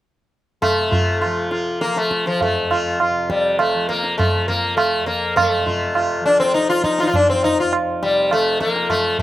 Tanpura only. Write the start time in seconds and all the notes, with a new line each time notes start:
0.63 C3
1.25 F3
1.86 F3
2.48 F2
3.10 C3
3.74 F3
4.34 F3
4.96 F2
5.58 C3
6.20 F3
6.81 F3
7.42 F2
8.03 C3
8.65 F3